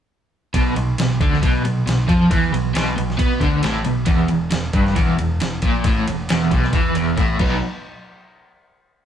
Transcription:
0.54 picked electric bass B1, overdriven electric guitar B2, kick, ride
0.76 picked electric bass B1, overdriven electric guitar B2, ride
0.98 picked electric bass B1, overdriven electric guitar B2, snare, ride
1.20 picked electric bass D2, overdriven electric guitar D3, kick, ride
1.33 snare
1.42 picked electric bass B1, overdriven electric guitar B2, kick, ride
1.64 picked electric bass B1, overdriven electric guitar B2, ride
1.86 picked electric bass B1, overdriven electric guitar B2, snare, ride
2.08 picked electric bass F2, overdriven electric guitar F3, kick, ride
2.31 picked electric bass E2, overdriven electric guitar E3, kick, ride
2.53 picked electric bass B1, overdriven electric guitar B2, ride
2.74 picked electric bass B1, overdriven electric guitar B2, snare, ride
2.97 picked electric bass B1, overdriven electric guitar B2, ride
3.10 snare
3.18 picked electric bass B2, overdriven electric guitar B3, kick, ride
3.40 picked electric bass D2, overdriven electric guitar D3, kick, ride
3.63 picked electric bass A1, overdriven electric guitar A2, snare, ride
3.85 picked electric bass B1, overdriven electric guitar B2, ride
4.06 picked electric bass E1, overdriven electric guitar E2, kick, ride
4.28 picked electric bass E1, overdriven electric guitar E2, ride
4.51 picked electric bass E1, overdriven electric guitar E2, snare, ride
4.73 picked electric bass G1, overdriven electric guitar G2, kick, ride
4.87 snare
4.96 picked electric bass E1, overdriven electric guitar E2, kick, ride
5.19 picked electric bass E1, overdriven electric guitar E2, ride
5.40 picked electric bass E1, overdriven electric guitar E2, snare, ride
5.62 picked electric bass A#1, overdriven electric guitar A#2, kick, ride
5.84 picked electric bass A1, overdriven electric guitar A2, kick, ride
6.07 picked electric bass E1, overdriven electric guitar E2, ride
6.29 picked electric bass E1, overdriven electric guitar E2, snare, ride
6.51 picked electric bass B1, overdriven electric guitar B2, kick, ride
6.64 snare
6.73 picked electric bass E2, overdriven electric guitar E3, kick, ride
6.95 picked electric bass E1, overdriven electric guitar E2, ride
7.16 picked electric bass A1, overdriven electric guitar A2, kick, ride
7.39 picked electric bass B1, overdriven electric guitar B2 F#3 B3 D#4, kick, crash

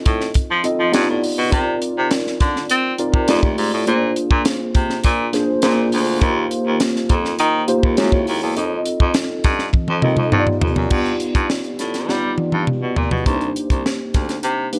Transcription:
Already playing: tine electric piano C4 D#4 F4 A4 D#5
0.06 baritone saxophone A2, kick, closed hi-hat
0.21 snare
0.34 kick, closed hi-hat
0.51 baritone saxophone F3
0.64 tine electric piano C4 D#4 F4 A4 D#5, closed hi-hat
0.80 baritone saxophone F3
0.92 baritone saxophone G2, tine electric piano B3 D#4 F4 G4 D5, snare, closed hi-hat
1.09 baritone saxophone A2
1.24 open hi-hat
1.38 baritone saxophone B2
1.50 baritone saxophone C3, tine electric piano C4 D#4 F4 A#4 D5, kick, closed hi-hat
1.82 closed hi-hat
1.98 baritone saxophone C3
2.11 snare, closed hi-hat
2.27 snare
2.40 baritone saxophone D3, kick, snare, closed hi-hat
2.56 snare
2.69 baritone saxophone C4, closed hi-hat
2.98 tine electric piano C4 D#4 F4 A#4 D5, closed hi-hat
3.13 baritone saxophone C3, kick
3.28 baritone saxophone F2, tine electric piano A3 D#4 F4 G4 D5, snare, closed hi-hat
3.43 baritone saxophone D#2, kick
3.58 baritone saxophone G#2, open hi-hat
3.73 baritone saxophone A2
3.86 baritone saxophone A#2, tine electric piano A#3 D4 F4 G#4 C5, closed hi-hat
4.16 closed hi-hat
4.31 baritone saxophone A#2, kick
4.45 snare, closed hi-hat
4.75 baritone saxophone C3, kick, closed hi-hat
4.90 snare
5.04 baritone saxophone A#2, kick, closed hi-hat
5.33 tine electric piano A#3 D4 F4 G#4 C5, snare, closed hi-hat
5.62 baritone saxophone A#2, tine electric piano A#3 D4 F4 G#4 C5, snare, closed hi-hat
5.92 baritone saxophone D2, open hi-hat
6.21 baritone saxophone D#2, tine electric piano A#3 D#4 F4 G4 C5, kick, closed hi-hat
6.51 closed hi-hat
6.66 baritone saxophone D#2
6.80 snare, closed hi-hat
6.96 snare
7.09 baritone saxophone F2, kick, closed hi-hat
7.25 snare
7.39 baritone saxophone D#3, closed hi-hat
7.68 tine electric piano A#3 D#4 F4 G4 C5, closed hi-hat
7.83 baritone saxophone D#2, kick
7.97 baritone saxophone F#2, tine electric piano G#3 E4 F#4 G#4 C#5, snare, closed hi-hat
8.03 tine electric piano A#3
8.12 baritone saxophone D#2, kick
8.27 baritone saxophone D#2, open hi-hat
8.42 baritone saxophone E2
8.56 baritone saxophone F2, tine electric piano C4 D#4 F4 A4 D#5, closed hi-hat
8.86 closed hi-hat
9.00 baritone saxophone F2, kick
9.14 snare, closed hi-hat
9.44 baritone saxophone G2, kick, snare, closed hi-hat
9.59 snare
9.73 kick, high tom
9.88 baritone saxophone F2, high tom
10.02 baritone saxophone D#2, tine electric piano C4 D#4 F4 A4 D#5, mid tom
10.17 baritone saxophone F2, mid tom
10.32 baritone saxophone G2, tine electric piano B3 D#4 F4 G4 C5, mid tom
10.40 tine electric piano D5
10.47 mid tom
10.61 baritone saxophone F2, floor tom
10.76 baritone saxophone F#2, floor tom
10.90 baritone saxophone G2, tine electric piano B3 D#4 F4 G4 D5, kick, crash
11.06 closed hi-hat
11.20 closed hi-hat
11.35 baritone saxophone G2, kick, closed hi-hat
11.50 snare
11.64 closed hi-hat
11.79 baritone saxophone A2, snare, closed hi-hat
11.94 snare, closed hi-hat
12.08 baritone saxophone G3, tine electric piano B3 D#4 F4 G4 D5, snare
12.38 high tom
12.52 baritone saxophone G2, high tom
12.67 mid tom
12.82 baritone saxophone B2
12.96 baritone saxophone A#2, floor tom
13.11 baritone saxophone B2, floor tom
13.26 baritone saxophone C2, tine electric piano A#3 D4 D#4 G4 B4, kick, closed hi-hat
13.34 tine electric piano C5
13.41 closed hi-hat
13.56 closed hi-hat
13.70 baritone saxophone C2, kick, closed hi-hat
13.86 snare
14.14 baritone saxophone D2, kick, snare, closed hi-hat
14.29 snare, closed hi-hat
14.43 baritone saxophone C3, closed hi-hat
14.72 tine electric piano A#3 D4 D#4 G4 B4, closed hi-hat

